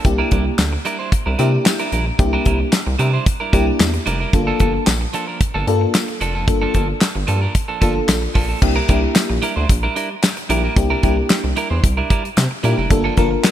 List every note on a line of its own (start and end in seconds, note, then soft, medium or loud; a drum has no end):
0.04 0.23 C2 medium
0.04 0.53 A#3 medium
0.04 0.53 D4 medium
0.04 0.53 E4 medium
0.04 0.53 G4 medium
0.04 muted clean electric guitar stroke soft
0.04 kick loud
0.04 closed hi-hat medium
0.18 0.30 G3 medium
0.18 0.30 D4 medium
0.18 0.31 E4 medium
0.18 0.31 A#4 medium
0.31 0.50 C2 medium
0.31 0.46 G3 medium
0.31 0.45 D4 medium
0.31 0.45 E4 medium
0.31 0.44 A#4 medium
0.31 kick medium
0.31 closed hi-hat medium
0.46 muted clean electric guitar stroke soft
0.58 0.77 D2 medium
0.58 muted clean electric guitar stroke soft
0.58 snare loud
0.58 clap medium
0.58 closed hi-hat medium
0.58 tambourine medium
0.73 muted clean electric guitar stroke soft
0.85 0.99 G3 medium
0.85 0.99 D4 medium
0.85 0.98 E4 medium
0.85 0.98 A#4 medium
0.85 closed hi-hat medium
0.99 1.10 G3 medium
0.99 1.11 D4 medium
0.99 1.11 E4 medium
0.99 1.12 C5 medium
1.11 muted clean electric guitar stroke soft
1.11 kick loud
1.11 closed hi-hat medium
1.26 1.35 C2 loud
1.26 1.37 G3 medium
1.26 1.38 D4 medium
1.26 1.38 E4 medium
1.26 1.38 A#4 medium
1.38 1.57 C3 loud
1.38 1.57 G3 medium
1.38 1.75 A#3 medium
1.38 1.75 D4 medium
1.38 1.52 D4 medium
1.38 1.75 E4 medium
1.38 1.52 E4 medium
1.38 1.75 G4 loud
1.38 1.51 A#4 medium
1.38 closed hi-hat medium
1.53 muted clean electric guitar stroke medium
1.65 muted clean electric guitar stroke soft
1.65 snare loud
1.65 clap loud
1.65 closed hi-hat medium
1.65 tambourine loud
1.79 1.91 G3 medium
1.79 1.91 D4 medium
1.79 1.92 E4 medium
1.79 1.92 A#4 medium
1.79 closed hi-hat medium
1.92 2.11 A#1 medium
1.92 2.07 G3 soft
1.92 2.06 D4 medium
1.92 2.06 E4 medium
1.92 2.05 A#4 medium
1.92 closed hi-hat medium
2.06 muted clean electric guitar stroke medium
2.19 2.37 C2 loud
2.19 2.67 A#3 medium
2.19 2.67 D4 medium
2.19 2.67 E4 medium
2.19 2.67 G4 medium
2.19 muted clean electric guitar stroke soft
2.19 kick loud
2.19 closed hi-hat medium
2.33 2.44 G3 medium
2.33 2.45 D4 medium
2.33 2.45 E4 medium
2.33 2.46 A#4 medium
2.45 2.64 C2 loud
2.45 2.60 G3 medium
2.45 2.59 D4 medium
2.45 2.59 E4 medium
2.45 2.59 A#4 medium
2.45 kick medium
2.45 closed hi-hat medium
2.60 muted clean electric guitar stroke soft
2.72 muted clean electric guitar stroke soft
2.72 snare loud
2.72 clap medium
2.72 closed hi-hat medium
2.72 tambourine medium
2.87 2.95 C2 loud
2.87 muted clean electric guitar stroke soft
2.99 3.18 C3 loud
2.99 3.13 G3 medium
2.99 3.13 D4 medium
2.99 3.12 E4 medium
2.99 3.13 A#4 medium
2.99 closed hi-hat medium
3.13 3.25 G3 medium
3.13 3.25 D4 medium
3.13 3.25 E4 medium
3.13 3.26 C5 medium
3.26 muted clean electric guitar stroke soft
3.26 kick loud
3.26 closed hi-hat loud
3.40 3.51 G3 medium
3.40 3.52 D4 medium
3.40 3.52 E4 medium
3.40 3.53 A#4 medium
3.53 3.71 C2 medium
3.53 3.71 G3 medium
3.53 3.89 A#3 medium
3.53 3.89 D4 medium
3.53 3.66 D4 medium
3.53 3.89 E4 medium
3.53 3.66 E4 medium
3.53 3.90 G4 loud
3.53 3.66 A#4 medium
3.53 kick medium
3.53 closed hi-hat medium
3.67 muted clean electric guitar stroke medium
3.79 3.98 E2 medium
3.79 muted clean electric guitar stroke soft
3.79 snare loud
3.79 clap medium
3.79 closed hi-hat medium
3.79 tambourine loud
3.94 muted clean electric guitar stroke soft
3.94 closed hi-hat soft
4.06 4.25 F1 medium
4.06 4.20 G3 medium
4.06 4.20 D4 medium
4.06 4.19 E4 medium
4.06 4.19 A#4 medium
4.06 closed hi-hat medium
4.20 4.33 G3 medium
4.20 4.33 D4 medium
4.20 4.33 E4 medium
4.20 4.33 A#4 medium
4.33 4.52 G1 medium
4.33 4.81 A#3 medium
4.33 4.82 D4 medium
4.33 4.82 F4 medium
4.33 4.82 A4 medium
4.33 muted clean electric guitar stroke soft
4.33 kick loud
4.33 closed hi-hat medium
4.47 4.58 F3 medium
4.47 4.59 A#3 medium
4.47 4.59 D4 medium
4.47 4.60 A4 medium
4.60 4.79 G1 loud
4.60 4.74 F3 medium
4.60 4.74 A#3 medium
4.60 4.73 D4 medium
4.60 4.73 A4 medium
4.60 kick medium
4.60 closed hi-hat medium
4.74 muted clean electric guitar stroke soft
4.87 5.06 A#1 loud
4.87 muted clean electric guitar stroke soft
4.87 snare loud
4.87 clap medium
4.87 closed hi-hat medium
4.87 tambourine medium
5.01 muted clean electric guitar stroke medium
5.13 5.28 F3 medium
5.13 5.27 A#3 medium
5.13 5.27 D4 medium
5.13 5.27 A4 medium
5.13 closed hi-hat medium
5.28 5.39 F3 medium
5.28 5.39 A#3 medium
5.28 5.40 D4 medium
5.28 5.41 A#4 medium
5.41 muted clean electric guitar stroke soft
5.41 kick loud
5.41 closed hi-hat loud
5.54 5.63 G1 medium
5.54 5.66 F3 medium
5.54 5.66 A#3 medium
5.54 5.66 D4 medium
5.54 5.67 A4 medium
5.67 5.86 G2 loud
5.67 6.04 A#3 medium
5.67 6.04 D4 medium
5.67 6.04 F4 medium
5.67 6.04 A4 loud
5.67 closed hi-hat medium
5.81 muted clean electric guitar stroke soft
5.94 muted clean electric guitar stroke soft
5.94 snare loud
5.94 clap loud
5.94 closed hi-hat medium
5.94 tambourine loud
6.08 muted clean electric guitar stroke soft
6.08 closed hi-hat soft
6.21 6.49 F1 medium
6.21 6.35 F3 medium
6.21 6.35 A#3 medium
6.21 6.34 D4 medium
6.21 6.34 A4 medium
6.21 closed hi-hat medium
6.35 6.46 F3 medium
6.35 6.47 A#3 medium
6.35 6.47 D4 medium
6.35 6.47 A4 medium
6.48 6.66 G1 loud
6.48 6.96 A#3 medium
6.48 6.96 D4 medium
6.48 6.96 F4 medium
6.48 6.96 A4 medium
6.48 muted clean electric guitar stroke soft
6.48 kick loud
6.48 closed hi-hat medium
6.62 6.73 F3 medium
6.62 6.73 A#3 medium
6.62 6.74 D4 medium
6.62 6.74 A4 medium
6.74 6.93 G1 loud
6.74 6.89 F3 medium
6.74 6.88 A#3 medium
6.74 6.88 D4 medium
6.74 6.87 A4 medium
6.74 kick medium
6.74 closed hi-hat medium
6.88 muted clean electric guitar stroke soft
7.01 muted clean electric guitar stroke soft
7.01 snare loud
7.01 clap medium
7.01 closed hi-hat medium
7.01 tambourine medium
7.15 7.24 G1 loud
7.15 muted clean electric guitar stroke soft
7.27 7.47 G2 loud
7.27 7.42 F3 medium
7.27 7.41 A#3 medium
7.27 7.41 D4 medium
7.27 7.41 A4 medium
7.27 closed hi-hat medium
7.42 7.53 F3 medium
7.42 7.53 A#3 soft
7.42 7.54 D4 medium
7.42 7.55 A#4 medium
7.54 muted clean electric guitar stroke soft
7.54 kick loud
7.54 closed hi-hat loud
7.68 7.80 F3 medium
7.68 7.80 A#3 medium
7.68 7.81 D4 medium
7.68 7.81 A4 medium
7.81 8.00 G1 loud
7.81 7.99 F3 medium
7.81 7.95 A#3 medium
7.81 8.18 A#3 medium
7.81 8.18 D4 medium
7.81 7.94 D4 medium
7.81 8.18 F4 medium
7.81 8.18 A4 loud
7.81 7.94 A4 medium
7.81 kick medium
7.81 closed hi-hat medium
7.95 muted clean electric guitar stroke soft
8.08 8.27 A#1 medium
8.08 muted clean electric guitar stroke soft
8.08 snare loud
8.08 clap loud
8.08 closed hi-hat medium
8.08 tambourine medium
8.22 muted clean electric guitar stroke soft
8.34 8.54 A#1 medium
8.34 8.49 F3 medium
8.34 8.48 A#3 medium
8.34 8.48 D4 medium
8.34 8.48 A4 medium
8.34 kick medium
8.34 open hi-hat medium
8.49 8.61 F3 medium
8.49 8.61 A#3 soft
8.49 8.61 D4 medium
8.49 8.62 A4 medium
8.62 8.80 C2 loud
8.62 8.74 A#3 medium
8.62 8.75 D4 medium
8.62 8.75 E4 medium
8.62 8.75 G4 medium
8.62 muted clean electric guitar stroke soft
8.62 kick loud
8.62 crash medium
8.76 8.87 G3 medium
8.76 8.88 D4 medium
8.76 8.88 E4 medium
8.76 8.88 A#4 medium
8.88 9.07 C2 loud
8.88 9.03 G3 medium
8.88 9.37 A#3 medium
8.88 9.37 D4 medium
8.88 9.03 D4 medium
8.88 9.37 E4 medium
8.88 9.02 E4 medium
8.88 9.37 G4 medium
8.88 9.02 A#4 medium
8.88 kick medium
8.88 closed hi-hat medium
9.03 muted clean electric guitar stroke soft
9.15 muted clean electric guitar stroke soft
9.15 snare loud
9.15 clap medium
9.15 closed hi-hat medium
9.15 tambourine medium
9.30 9.39 A#1 loud
9.30 muted clean electric guitar stroke soft
9.42 9.56 G3 medium
9.42 9.56 D4 medium
9.42 9.55 E4 medium
9.42 9.56 A#4 medium
9.42 closed hi-hat medium
9.56 9.65 D2 loud
9.56 9.68 G3 medium
9.56 9.68 D4 medium
9.56 9.68 E4 medium
9.56 9.69 C5 medium
9.69 9.88 A#1 medium
9.69 muted clean electric guitar stroke soft
9.69 kick loud
9.69 closed hi-hat loud
9.83 9.94 G3 medium
9.83 9.95 D4 medium
9.83 9.95 E4 medium
9.83 9.96 A#4 medium
9.95 10.14 G3 medium
9.95 10.10 D4 medium
9.95 10.09 E4 loud
9.95 10.09 A#4 loud
9.95 closed hi-hat medium
10.10 muted clean electric guitar stroke soft
10.23 muted clean electric guitar stroke medium
10.23 snare loud
10.23 clap medium
10.23 closed hi-hat loud
10.23 tambourine loud
10.37 muted clean electric guitar stroke soft
10.37 closed hi-hat soft
10.49 10.68 A#1 loud
10.49 10.64 G3 medium
10.49 10.62 A#3 medium
10.49 10.62 D4 medium
10.49 10.63 D4 medium
10.49 10.62 E4 medium
10.49 10.63 E4 medium
10.49 10.62 G4 medium
10.49 10.62 A#4 loud
10.49 closed hi-hat medium
10.64 10.75 G3 medium
10.64 10.75 D4 medium
10.64 10.76 E4 medium
10.64 10.76 A#4 medium
10.76 10.95 C2 loud
10.76 10.89 A#3 medium
10.76 10.89 D4 medium
10.76 10.89 E4 medium
10.76 10.89 G4 medium
10.76 kick loud
10.76 closed hi-hat medium
10.90 11.02 G3 medium
10.90 11.02 D4 medium
10.90 11.03 E4 medium
10.90 11.03 A#4 loud
11.03 11.22 C2 loud
11.03 11.17 G3 medium
11.03 11.51 A#3 medium
11.03 11.51 D4 medium
11.03 11.17 D4 medium
11.03 11.51 E4 medium
11.03 11.16 E4 medium
11.03 11.51 G4 medium
11.03 11.16 A#4 medium
11.03 kick medium
11.03 closed hi-hat medium
11.17 muted clean electric guitar stroke medium
11.30 muted clean electric guitar stroke medium
11.30 snare loud
11.30 clap medium
11.30 closed hi-hat medium
11.30 tambourine medium
11.44 11.53 C2 medium
11.44 muted clean electric guitar stroke soft
11.56 11.71 G3 medium
11.56 11.70 D4 medium
11.56 11.70 E4 medium
11.56 11.70 A#4 loud
11.56 closed hi-hat medium
11.70 11.79 E2 loud
11.70 11.82 G3 medium
11.70 11.82 D4 medium
11.70 11.83 E4 medium
11.70 11.84 C5 medium
11.83 12.02 C2 medium
11.83 muted clean electric guitar stroke soft
11.83 kick loud
11.83 closed hi-hat loud
11.97 12.09 G3 medium
11.97 12.09 D4 medium
11.97 12.10 E4 medium
11.97 12.10 A#4 medium
12.10 12.28 G3 medium
12.10 12.24 D4 medium
12.10 12.24 E4 medium
12.10 12.23 A#4 medium
12.10 kick loud
12.10 closed hi-hat medium
12.24 muted clean electric guitar stroke soft
12.24 closed hi-hat medium
12.37 12.47 C3 medium
12.37 muted clean electric guitar stroke soft
12.37 snare loud
12.37 clap medium
12.37 closed hi-hat loud
12.37 tambourine medium
12.51 muted clean electric guitar stroke soft
12.63 12.74 A#2 medium
12.63 12.78 G3 medium
12.63 12.76 A#3 medium
12.63 12.76 D4 medium
12.63 12.78 D4 medium
12.63 12.76 E4 medium
12.63 12.77 E4 loud
12.63 12.77 G4 medium
12.63 12.76 A#4 medium
12.63 closed hi-hat medium
12.78 12.87 F1 medium
12.78 12.90 G3 medium
12.78 12.90 D4 medium
12.78 12.91 E4 medium
12.78 12.91 A#4 medium
12.90 13.09 G1 loud
12.90 13.03 A#3 medium
12.90 13.03 D4 medium
12.90 13.03 F4 medium
12.90 13.03 A4 medium
12.90 muted clean electric guitar stroke soft
12.90 kick loud
12.90 closed hi-hat medium
13.04 13.16 F3 medium
13.04 13.16 A#3 medium
13.04 13.17 D4 medium
13.04 13.17 A4 medium
13.17 13.36 G1 loud
13.17 13.32 F3 medium
13.17 13.51 A#3 medium
13.17 13.31 A#3 medium
13.17 13.51 D4 medium
13.17 13.30 D4 medium
13.17 13.51 F4 medium
13.17 13.30 A4 medium
13.17 13.51 A#4 loud
13.17 kick medium
13.17 closed hi-hat medium
13.31 muted clean electric guitar stroke soft
13.44 muted clean electric guitar stroke medium
13.44 snare loud
13.44 clap medium
13.44 closed hi-hat medium
13.44 tambourine medium